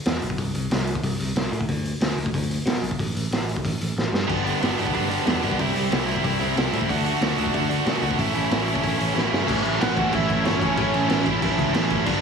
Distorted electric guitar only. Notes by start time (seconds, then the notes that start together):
4.28 G2 D3 G3 B3 D4
4.45 G2 D3 G3 B3 D4
4.60 G2 D3 G3 B3 D4
4.78 G2 D3 G3 B3 D4
4.93 G2 D3 G3 B3 D4
5.10 G2 D3 G3 B3 D4
5.25 G2 D3 G3 B3 D4
5.42 G2 D3 G3 B3 D4
5.59 C3 G3 C4 E4
5.74 C3 G3 C4 E4
5.91 C3 G3 C4 E4
6.07 C3 G3 C4 E4
6.24 C3 G3 C4 E4
6.40 C3 G3 C4 E4
6.56 C3 G3 C4 E4
6.73 C3 G3 C4 E4
6.88 D3 A3 D4 F#4
7.04 D3 A3 D4 F#4
7.21 D3 A3 D4 F#4
7.36 D3 A3 D4 F#4
7.53 D3 A3 D4 F#4
7.69 D3 A3 D4 F#4
7.85 D3 A3 D4 F#4
8.02 D3 A3 D4 F#4
8.18 A2 E3 A3 C#4 E4
8.34 A2 E3 A3 C#4 E4
8.50 A2 E3 A3 C#4 E4
8.66 A2 E3 A3 C#4 E4
8.81 A2 E3 A3 C#4 E4
8.98 A2 E3 A3 C#4 E4
9.13 A2 E3 A3 C#4 E4
9.30 A2 E3 A3 C#4 E4
9.46 A2 E3 A3 C#4 E4
9.78 A2 E3 A3 C#4 E4
9.95 A2 E3 A3 C#4 E4
10.10 A2 E3 A3 C#4 E4
10.43 A2 E3 A3 C#4 E4
10.60 A2 E3 A3 C#4 E4
10.76 A2 E3 A3 C#4 E4
11.08 A2 E3 A3 C#4 E4
11.25 A2 E3 A3 C#4 E4
11.41 A2 E3 A3 C#4 E4
11.73 A2 E3 A3 C#4 E4
11.88 A2 E3 A3 C#4 E4
12.05 G2 D3 G3 B3 D4